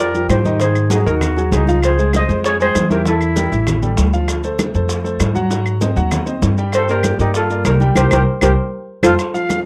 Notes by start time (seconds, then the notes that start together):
Already playing: F2
0.00 A#4 D5
0.14 F3 F4 G4, high conga, maracas
0.29 G#2 G4 C5, high bongo, low bongo, high conga, claves, maracas
0.44 D#3 D#4 D#5, high bongo, high conga, maracas
0.60 D#3 D#4 G#4 C5 D#5, high bongo, high conga, maracas
0.75 high bongo, high conga, claves, maracas
0.90 F#3 D#4 F#4 G#4, high bongo, high conga, maracas
1.05 D#2 D#3 D#4 F#4 A#4 D#5, high conga, maracas
1.21 high bongo, high conga, low conga, claves, maracas
1.36 F#3 F#4 G#4, high bongo, high conga, maracas
1.51 C#2 D#4 G#4, high bongo, low bongo, high conga, maracas
1.67 F3 F4 F5, high bongo, high conga, maracas
1.82 G#4 C5, high bongo, high conga, claves, maracas
1.99 G#3 G#4 C5, high bongo, high conga, maracas
2.13 C5 D#5, high bongo, high conga, claves, maracas
2.29 F2 G#3 G#4 C5, high bongo, high conga, maracas
2.44 G#4 C#5, high bongo, high conga, maracas
2.60 G#3 G#4 C5, high conga, maracas
2.75 E2, high bongo, low bongo, high conga, claves, maracas
2.90 E3 E4 G4 A#4 E5, high bongo, high conga, maracas
3.05 E3 E4 A4 E5, high bongo, high conga, maracas
3.21 high bongo, high conga, claves, maracas
3.36 G3 G4 A#4, high bongo, high conga, maracas
3.52 A1 E3 E4 E5, high conga, maracas
3.67 high bongo, high conga, low conga, claves, maracas
3.82 G3 G4 A4, high bongo, high conga, low conga, maracas
3.97 D2, high bongo, low bongo, high conga, maracas
4.13 F3 F4 F5, high bongo, maracas
4.28 high bongo, high conga, claves, maracas
4.43 A3 A4 C5, high bongo, high conga, maracas
4.59 high bongo, high conga, claves, maracas
4.74 F2 A3 A4 C5, high bongo, high conga, maracas
4.89 high bongo, high conga, maracas
5.04 A3 A4 C5, high conga, maracas
5.20 G#2, high bongo, low bongo, high conga, claves, maracas
5.35 F#3 F#4 F#5, high bongo, high conga, maracas
5.50 F#3 F#4 F#5, high bongo, high conga, maracas
5.66 high bongo, high conga, claves, maracas
5.81 C4 C5 D#5, high bongo, high conga, maracas
5.96 D#2 F#3 F#4 F#5, high conga, maracas
6.11 high bongo, high conga, low conga, claves, maracas
6.26 C4 C5 D#5, high bongo, high conga, maracas
6.42 G2, high bongo, low bongo, high conga, maracas
6.58 G3 G4 G5, high bongo, maracas
6.72 A4 C5, high bongo, high conga, claves, maracas
6.88 A#3 G4 A#4 D5, high bongo, high conga, maracas
7.03 high bongo, high conga, claves, maracas
7.19 G2 A#3 D#4 G4 A#4 D5, high bongo, high conga, maracas
7.34 F4 A4, high bongo, high conga, maracas
7.50 A#3 A#4 D5, high conga, maracas
7.65 C2 G4 A#4, high bongo, low bongo, high conga, claves, maracas
7.80 G3 G4 G5, high bongo, high conga, maracas
7.95 C2 G4 A#4 C5, low bongo, high conga, claves, maracas
8.11 C2 G4 A#4 C5, low bongo, high conga, claves, maracas
8.41 C2 G4 A#4 C5, low bongo, high conga, claves, maracas
9.03 F2 F4 A4 C5, low bongo, high conga, claves, maracas
9.19 high bongo, high conga, claves, maracas
9.34 F3 F4 F5, high bongo, high conga, maracas
9.49 high bongo, high conga, claves, maracas